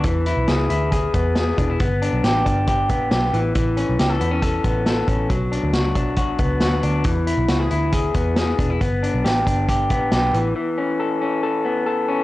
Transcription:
<<
  \new Staff \with { instrumentName = "Clean electric guitar" } { \time 4/4 \key a \mixolydian \tempo 4 = 137 e8 e'8 gis'8 e'8 gis'8 b8 gis'8 d'16 e'16 | b8 d'8 g'8 d'8 g'8 b8 g'8 e8 | e8 cis'8 g'16 a'16 b16 cis'16 a'8 b8 a'8 cis'8 | fis8 d'8 fis'8 d'8 fis'8 b8 fis'8 d'8 |
e8 e'8 fis'16 gis'16 e'8 gis'8 b8 gis'8 d'16 e'16 | b8 d'8 g'8 d'8 g'8 b8 g'8 e8 | e8 cis'8 a'8 cis'8 a'8 b8 a'8 cis'8 | }
  \new Staff \with { instrumentName = "Picked electric bass" } { \clef bass \time 4/4 \key a \mixolydian e,8. b,,16 cis,8 d,4 e,4 e,,8 | g,,8. b,,16 a,,8 g,,4 a,,8 b,,8 a,,8 | a,,8. b,,16 cis,8 e,4 a,,4 a,,8 | b,,8. d,16 cis,8 b,,4 cis,8 d,8 d,8 |
e,8. b,,16 cis,8 d,4 e,4 e,,8 | g,,8. b,,16 a,,8 g,,4 a,,8 b,,8 a,,8 | r1 | }
  \new DrumStaff \with { instrumentName = "Drums" } \drummode { \time 4/4 <hh bd>8 hh8 <hh sn>8 hh8 <hh bd>8 <hh bd>8 <hh sn>8 <hh bd>8 | <hh bd>8 hh8 <hh sn>8 <hh bd>8 <hh bd>8 <hh bd>8 <hh sn>8 hh8 | <hh bd>8 hh8 <hh sn>8 hh8 <hh bd>8 <hh bd>8 <hh sn>8 <hh bd>8 | <hh bd>8 hh8 <hh sn>8 <hh bd>8 <hh bd>8 <hh bd>8 <hh sn>8 hh8 |
<hh bd>8 hh8 <hh sn>8 hh8 <hh bd>8 <hh bd>8 <hh sn>8 <hh bd>8 | <hh bd>8 hh8 <hh sn>8 <hh bd>8 <hh bd>8 <hh bd>8 <hh sn>8 hh8 | r4 r4 r4 r4 | }
>>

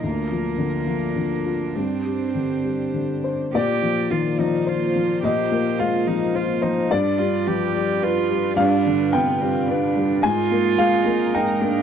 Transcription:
<<
  \new Staff \with { instrumentName = "String section" } { \time 3/4 \key bes \mixolydian \tempo 4 = 108 << { <f' bes'>2. | <g' c''>2. | <f' c''>2.~ | <f' c''>2. |
<f' b'>2.~ | <f' b'>2. | <ees' bes'>2. | } \\ { d'2.~ | d'2. | bes2.~ | bes2. |
g2.~ | g2. | aes2. | } >> }
  \new Staff \with { instrumentName = "Cello" } { \time 3/4 \key bes \mixolydian bes2. | c'2~ c'8 r8 | g'4 f'8 ees'8 f'4 | g'4 f'8 ees'8 f'8 ees'8 |
d'8 f'8 g'4 f'4 | d'4 b8 c'8 d'4 | f'2 ees'8 d'8 | }
  \new Staff \with { instrumentName = "Upright piano" } { \time 3/4 \key bes \mixolydian r2. | r2 r8 c''8 | d''2. | ees''4 f''4 r8 c''8 |
d''2. | f''4 g''4 r4 | aes''4 f''4 g''4 | }
  \new Staff \with { instrumentName = "Upright piano" } { \clef bass \time 3/4 \key bes \mixolydian d,8 f8 d8 f8 d8 f'8 | g,8 g8 d8 g8 d8 d'8 | bes,8 f8 ees8 f8 c''8 f8 | bes,8 bes8 aes8 f8 c''8 f8 |
g,8 g8 f8 g8 b'8 g8 | g,8 d8 c8 g8 b'8 g8 | aes,8 bes8 aes8 bes8 bes'8 bes8 | }
>>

